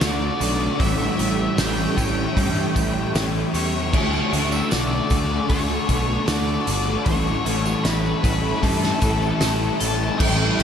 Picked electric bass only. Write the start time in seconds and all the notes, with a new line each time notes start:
0.02 D2
0.41 B1
0.80 A1
1.20 A1
1.58 A1
1.98 A1
2.37 G2
2.76 A1
3.15 A1
3.54 E2
3.94 D2
4.33 D2
4.72 B1
5.11 D2
5.50 D2
5.89 B1
6.29 D2
6.68 G1
7.06 A1
7.46 A1
7.85 A1
8.24 A1
8.63 G2
9.02 A1
9.42 A1
9.81 A1
10.20 A1
10.59 A1